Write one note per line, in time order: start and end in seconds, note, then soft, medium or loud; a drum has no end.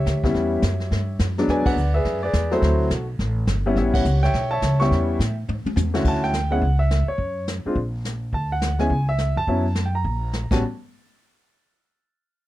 0.00 1.17 G4 medium
0.00 1.17 C#5 soft
0.00 1.16 E5 medium
0.06 0.34 D2 medium
0.06 kick soft
0.06 snare medium
0.06 hi-hat pedal soft
0.24 0.61 G3 medium
0.24 0.61 B3 medium
0.24 0.61 C#4 medium
0.24 0.61 E4 medium
0.24 kick soft
0.24 snare soft
0.34 0.62 E2 medium
0.34 brush sweep soft
0.34 kick soft
0.34 snare soft
0.62 0.90 F#2 medium
0.62 kick soft
0.62 snare medium
0.62 hi-hat pedal medium
0.80 snare soft
0.91 1.19 G2 medium
0.91 brush sweep soft
0.91 kick soft
0.91 snare soft
1.19 1.47 F#2 medium
1.19 kick soft
1.19 snare medium
1.19 hi-hat pedal medium
1.38 1.75 F#3 medium
1.38 1.75 G#3 medium
1.38 1.75 B3 medium
1.38 1.75 D4 medium
1.38 snare soft
1.48 1.65 E2 medium
1.48 1.65 B4 medium
1.48 1.65 D5 medium
1.48 1.67 G#5 medium
1.48 brush sweep soft
1.48 kick soft
1.48 snare soft
1.66 1.94 B4 medium
1.66 2.19 D5 medium
1.66 1.95 F#5 medium
1.66 muted upright bass stroke soft
1.66 kick medium
1.66 ride medium
1.76 2.04 D2 medium
1.76 hi-hat pedal medium
1.94 2.23 G#4 medium
1.94 2.23 B4 medium
1.94 2.21 E5 medium
2.05 2.33 F#2 medium
2.05 brush sweep soft
2.05 kick soft
2.05 snare soft
2.23 2.60 G#4 medium
2.23 2.60 B4 medium
2.23 2.52 D5 medium
2.33 2.61 E2 medium
2.33 kick soft
2.33 snare medium
2.33 hi-hat pedal medium
2.51 2.88 F#3 medium
2.51 2.89 A3 medium
2.51 2.89 C4 medium
2.51 2.89 E4 medium
2.51 3.06 F#4 medium
2.51 3.06 A4 medium
2.51 2.88 C5 medium
2.51 snare soft
2.62 2.90 D2 medium
2.62 brush sweep soft
2.62 kick soft
2.62 snare soft
2.90 3.18 B1 medium
2.90 kick soft
2.90 snare medium
2.90 hi-hat pedal medium
3.19 3.47 A1 medium
3.19 brush sweep soft
3.19 kick soft
3.19 snare soft
3.47 3.75 G1 medium
3.47 kick soft
3.47 snare medium
3.47 hi-hat pedal medium
3.66 4.03 G3 medium
3.66 4.03 B3 medium
3.66 4.03 C#4 medium
3.66 4.03 E4 medium
3.76 4.04 A1 medium
3.76 4.31 G4 medium
3.76 3.94 C#5 medium
3.76 3.82 E5 medium
3.76 brush sweep soft
3.76 kick soft
3.76 snare soft
3.94 4.23 C#5 medium
3.94 4.23 F#5 medium
3.94 kick medium
3.94 ride medium
4.05 4.32 C#2 medium
4.05 hi-hat pedal medium
4.23 4.51 C#5 medium
4.23 4.51 E5 medium
4.23 4.49 G5 loud
4.23 snare soft
4.33 4.61 B1 medium
4.33 brush sweep soft
4.33 kick soft
4.33 snare soft
4.51 5.05 C#5 medium
4.51 4.81 E5 medium
4.51 4.80 A5 medium
4.62 4.90 C#2 medium
4.62 kick soft
4.62 snare medium
4.62 hi-hat pedal soft
4.80 5.17 G3 medium
4.80 5.17 B3 medium
4.80 5.18 C#4 medium
4.80 5.18 E4 medium
4.80 5.34 E5 medium
4.80 5.34 G5 medium
4.80 5.16 C#6 loud
4.80 snare soft
4.91 5.18 E2 medium
4.91 brush sweep soft
4.91 kick soft
4.91 snare soft
5.19 5.47 A2 medium
5.19 kick soft
5.19 snare medium
5.19 hi-hat pedal medium
5.48 5.65 G#2 medium
5.48 high tom soft
5.65 muted upright bass stroke soft
5.65 high tom medium
5.76 6.04 E2 medium
5.76 hi-hat pedal medium
5.76 high tom medium
5.94 6.31 D3 medium
5.94 6.31 A3 medium
5.94 6.31 C#4 medium
5.94 6.31 E4 medium
5.94 6.31 F#4 medium
5.94 snare medium
6.04 6.59 D2 medium
6.04 6.25 A5 medium
6.04 brush sweep soft
6.04 kick medium
6.04 crash medium
6.14 snare soft
6.23 6.52 G5 loud
6.23 snare soft
6.33 snare medium
6.33 hi-hat pedal soft
6.50 6.60 G#3 medium
6.50 6.61 B3 soft
6.50 6.61 C#4 medium
6.50 6.61 E4 medium
6.50 6.81 F#5 medium
6.62 7.05 C#2 medium
6.62 brush sweep soft
6.62 kick soft
6.79 7.06 E5 medium
6.91 snare medium
6.91 hi-hat pedal soft
7.08 7.45 C#5 medium
7.08 muted upright bass stroke soft
7.18 7.61 F#2 medium
7.18 brush sweep soft
7.18 kick soft
7.48 snare medium
7.48 hi-hat pedal soft
7.65 7.75 G#3 soft
7.65 7.75 C4 medium
7.65 7.76 D4 medium
7.65 7.76 F4 medium
7.65 muted upright bass stroke soft
7.75 8.30 A#1 medium
7.75 brush sweep soft
7.75 kick soft
8.05 snare medium
8.05 hi-hat pedal medium
8.33 8.87 D2 medium
8.33 8.50 A5 medium
8.33 brush sweep soft
8.33 kick soft
8.52 8.81 F#5 medium
8.62 snare medium
8.62 hi-hat pedal medium
8.79 8.89 G#3 medium
8.79 8.89 B3 medium
8.79 8.89 C#4 medium
8.79 8.89 E4 medium
8.79 9.06 G#5 loud
8.79 snare soft
8.90 9.33 C#2 medium
8.90 brush sweep soft
8.90 kick soft
9.09 9.35 E5 medium
9.18 snare medium
9.18 hi-hat pedal medium
9.36 9.47 F2 medium
9.36 9.87 A5 loud
9.47 10.02 F#2 medium
9.47 9.64 F#3 medium
9.47 9.64 B3 medium
9.47 9.64 C#4 medium
9.47 9.64 E4 medium
9.47 brush sweep soft
9.47 kick soft
9.75 snare soft
9.75 hi-hat pedal soft
9.86 9.94 G5 medium
9.95 10.48 A#5 medium
10.04 10.49 A#1 medium
10.04 brush sweep soft
10.04 kick soft
10.33 snare medium
10.33 hi-hat pedal medium
10.51 10.61 A1 medium
10.51 10.61 G3 medium
10.51 10.61 B3 medium
10.51 10.61 C#4 medium
10.51 10.61 F#4 medium
10.51 10.62 A5 medium
10.51 kick medium
10.51 snare medium
10.51 crash medium